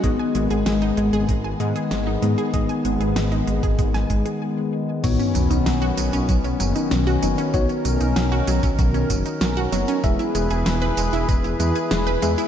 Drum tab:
CC |----------------|----------------|x---------------|----------------|
HH |x-xxxxxxx-xxx-xx|xxxxxxxxxxxx----|xxxxxxxxxxxxxxxx|xxxxxxxxxxxxxxxx|
TB |----------------|----------------|xxxxxxxxxxxxxxxx|xxxxxxxxxxxxxxxx|
SD |----o-------o---|----o----o------|----o-------o---|----o-------o---|
BD |o-------o-------|o------oo-o-----|o-------o-------|o------oo-o-----|

CC |----------------|
HH |xxxxxxxxxxxxxxxx|
TB |xxxxxxxxxxxxxxxx|
SD |----o-------o---|
BD |o-------o-------|